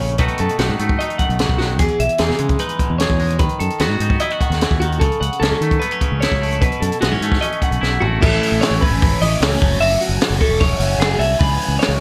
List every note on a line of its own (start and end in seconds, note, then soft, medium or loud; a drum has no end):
0.00 0.19 A#1 medium
0.00 0.18 C#3 medium
0.00 0.17 A3 soft
0.00 0.18 C#4 medium
0.00 0.18 C#5 medium
0.09 closed hi-hat soft
0.18 0.27 B1 medium
0.18 0.59 B2 medium
0.18 0.57 D#3 medium
0.18 0.79 A3 medium
0.18 0.59 D#4 medium
0.18 1.78 F#4 medium
0.18 0.39 B4 medium
0.18 kick medium
0.18 closed hi-hat medium
0.28 closed hi-hat soft
0.38 0.47 F#2 medium
0.38 0.59 A4 medium
0.38 closed hi-hat medium
0.49 closed hi-hat soft
0.58 0.71 B1 medium
0.58 1.59 D#3 medium
0.58 1.00 D#4 soft
0.58 0.99 F#4 medium
0.58 snare medium
0.58 closed hi-hat medium
0.69 0.77 G#2 medium
0.79 0.95 G#2 medium
0.79 1.78 A3 soft
0.79 closed hi-hat medium
0.89 kick medium
0.99 1.83 D#4 medium
0.99 1.18 D#5 medium
0.99 closed hi-hat medium
1.10 closed hi-hat soft
1.18 1.78 F#2 medium
1.18 1.59 F#5 medium
1.18 kick medium
1.18 closed hi-hat soft
1.29 1.45 B1 medium
1.29 closed hi-hat soft
1.39 1.60 C#3 medium
1.39 snare loud
1.39 closed hi-hat medium
1.49 1.80 B1 medium
1.49 kick medium
1.58 1.80 D#3 medium
1.58 1.79 F#4 medium
1.58 snare soft
1.79 1.87 E2 medium
1.79 3.40 E2 medium
1.79 1.99 G#4 medium
1.79 kick loud
1.79 closed hi-hat medium
1.79 splash medium
1.88 closed hi-hat soft
2.00 2.07 B1 medium
2.00 2.20 E5 medium
2.00 closed hi-hat medium
2.09 closed hi-hat soft
2.18 2.31 E2 medium
2.18 3.38 E3 medium
2.18 2.59 D#4 soft
2.18 2.59 G#4 medium
2.18 snare medium
2.18 closed hi-hat medium
2.29 2.37 C#3 medium
2.29 snare soft
2.38 2.55 C#3 medium
2.38 3.19 G#3 medium
2.38 closed hi-hat medium
2.49 kick medium
2.49 closed hi-hat soft
2.59 3.38 D#4 medium
2.59 2.98 B4 medium
2.59 closed hi-hat medium
2.69 closed hi-hat soft
2.79 3.38 B2 medium
2.79 kick medium
2.79 closed hi-hat medium
2.90 3.05 E2 medium
2.99 3.38 G#4 medium
2.99 3.39 C#5 medium
2.99 snare loud
2.99 closed hi-hat medium
3.10 3.39 E2 medium
3.10 kick medium
3.19 3.38 G#3 soft
3.19 open hi-hat medium
3.30 closed hi-hat soft
3.39 3.47 D#2 medium
3.39 4.40 D#3 medium
3.39 3.60 B4 medium
3.39 kick loud
3.39 closed hi-hat medium
3.49 closed hi-hat soft
3.60 3.68 F#2 medium
3.60 3.80 A4 medium
3.60 closed hi-hat medium
3.70 closed hi-hat soft
3.79 3.89 D#2 medium
3.79 4.98 B3 medium
3.79 4.20 F#4 medium
3.79 4.21 F#4 medium
3.79 snare loud
3.79 closed hi-hat medium
3.89 3.97 G#2 medium
4.00 4.15 G#2 medium
4.00 4.99 D#4 soft
4.00 closed hi-hat medium
4.10 kick medium
4.20 4.32 E4 medium
4.20 4.40 D#5 medium
4.20 closed hi-hat medium
4.30 5.01 F#4 soft
4.30 closed hi-hat soft
4.40 4.61 D#3 medium
4.40 4.80 F#5 medium
4.40 kick medium
4.40 closed hi-hat soft
4.50 4.65 D#2 medium
4.50 snare soft
4.50 closed hi-hat soft
4.61 4.81 E3 medium
4.61 snare loud
4.61 closed hi-hat medium
4.71 5.01 D#2 medium
4.71 kick medium
4.80 5.02 D#3 medium
4.80 4.99 F#4 medium
4.80 closed hi-hat medium
4.92 closed hi-hat soft
5.00 5.09 C#2 medium
5.00 5.42 C#3 medium
5.00 5.20 A4 medium
5.00 kick loud
5.00 closed hi-hat medium
5.12 closed hi-hat soft
5.21 5.28 C#2 medium
5.21 5.41 F#5 medium
5.21 closed hi-hat medium
5.33 closed hi-hat soft
5.40 5.53 C#2 medium
5.40 6.59 F#3 medium
5.40 5.81 C#4 medium
5.40 5.80 A4 medium
5.40 snare loud
5.40 closed hi-hat medium
5.52 5.59 D#3 medium
5.61 5.76 D#3 medium
5.61 6.41 A3 medium
5.61 closed hi-hat medium
5.71 kick medium
5.71 closed hi-hat soft
5.80 5.92 B3 medium
5.80 6.20 B4 medium
5.80 closed hi-hat medium
5.91 6.62 C#4 soft
5.91 closed hi-hat soft
6.01 6.59 C#3 medium
6.01 kick medium
6.01 closed hi-hat medium
6.12 6.27 C#2 medium
6.21 7.80 E4 medium
6.21 6.61 C#5 medium
6.21 snare loud
6.21 closed hi-hat medium
6.32 6.62 C#2 medium
6.32 kick medium
6.42 6.66 A3 medium
6.42 open hi-hat medium
6.52 closed hi-hat soft
6.61 6.69 B1 medium
6.61 7.02 B2 medium
6.61 6.81 B4 medium
6.61 kick loud
6.61 closed hi-hat medium
6.72 closed hi-hat soft
6.80 6.89 F#2 medium
6.80 7.00 A4 medium
6.80 closed hi-hat medium
6.92 closed hi-hat soft
7.01 7.13 B1 medium
7.01 8.19 E3 medium
7.01 7.12 B3 medium
7.01 7.41 F#4 medium
7.01 snare loud
7.01 closed hi-hat medium
7.12 7.19 G#2 medium
7.12 7.41 C#4 soft
7.21 7.36 G#2 medium
7.21 8.02 A3 medium
7.21 closed hi-hat medium
7.32 kick medium
7.32 snare soft
7.41 8.19 C#4 medium
7.41 7.62 D#5 medium
7.41 closed hi-hat medium
7.52 closed hi-hat soft
7.62 8.19 F#2 medium
7.62 8.02 F#5 medium
7.62 kick medium
7.62 closed hi-hat medium
7.71 7.79 B1 medium
7.71 closed hi-hat soft
7.81 8.00 B1 medium
7.81 9.81 E4 medium
7.81 snare medium
8.01 8.20 A1 medium
8.01 8.20 A3 medium
8.01 8.22 F#4 medium
8.01 floor tom medium
8.20 8.37 A1 loud
8.20 9.01 A2 loud
8.20 9.40 E3 loud
8.20 8.84 A3 loud
8.20 8.82 C#4 loud
8.20 8.82 E4 loud
8.20 8.62 A4 loud
8.20 kick loud
8.20 crash loud
8.43 open hi-hat medium
8.52 8.59 A1 medium
8.61 8.81 C#5 medium
8.61 snare loud
8.61 open hi-hat medium
8.71 8.79 A1 medium
8.81 9.25 A3 medium
8.81 9.24 C#4 medium
8.81 9.22 E4 medium
8.81 9.21 B4 medium
8.81 kick medium
8.81 open hi-hat medium
8.91 9.14 G#1 medium
9.02 kick loud
9.02 open hi-hat medium
9.21 9.36 A1 medium
9.21 9.42 C#4 medium
9.21 9.43 E4 medium
9.21 9.42 D#5 medium
9.21 open hi-hat medium
9.26 9.40 A3 medium
9.40 9.56 C#2 loud
9.40 9.59 A2 loud
9.40 9.62 E3 loud
9.40 9.60 A3 loud
9.40 9.60 C#4 loud
9.40 9.60 E4 loud
9.40 9.80 C#5 medium
9.40 snare loud
9.40 open hi-hat loud
9.60 9.77 F#1 loud
9.60 9.80 F#3 medium
9.60 9.81 A3 medium
9.60 9.82 C#4 medium
9.60 9.82 F#4 loud
9.60 kick loud
9.60 open hi-hat medium
9.80 9.95 F#1 loud
9.80 10.61 F#3 loud
9.80 10.41 A3 medium
9.80 10.40 C#4 loud
9.80 10.38 F#4 loud
9.80 10.01 E5 loud
9.80 open hi-hat loud
10.01 10.41 F#4 medium
10.01 open hi-hat medium
10.09 10.17 F#1 medium
10.21 snare loud
10.21 open hi-hat medium
10.30 10.38 F#1 loud
10.39 10.81 A3 medium
10.39 10.80 C#4 medium
10.39 10.78 F#4 medium
10.39 10.61 A4 medium
10.39 kick medium
10.39 open hi-hat medium
10.49 10.72 E1 medium
10.60 11.00 C#5 medium
10.60 kick loud
10.60 open hi-hat medium
10.79 10.95 F#1 loud
10.79 10.99 A3 medium
10.79 11.01 C#4 medium
10.79 11.02 F#4 medium
10.79 open hi-hat medium
10.98 11.14 F#1 loud
10.98 11.39 F#3 loud
10.98 11.20 A3 loud
10.98 11.21 C#4 loud
10.98 11.20 G#4 medium
10.98 snare loud
10.98 open hi-hat medium
11.03 11.18 F#4 loud
11.19 11.34 C2 medium
11.19 11.40 A3 medium
11.19 11.41 C#4 medium
11.19 11.39 F#4 medium
11.19 11.39 E5 medium
11.19 open hi-hat medium
11.39 11.56 C#2 loud
11.39 12.00 C#3 loud
11.39 12.00 E3 loud
11.39 12.00 G#3 loud
11.39 12.00 C#4 loud
11.39 11.98 G#4 loud
11.39 11.79 B4 loud
11.39 kick loud
11.39 open hi-hat medium
11.61 open hi-hat medium
11.68 11.77 C#2 loud
11.79 12.00 C#5 medium
11.79 snare loud
11.79 open hi-hat medium
11.88 11.97 C#2 medium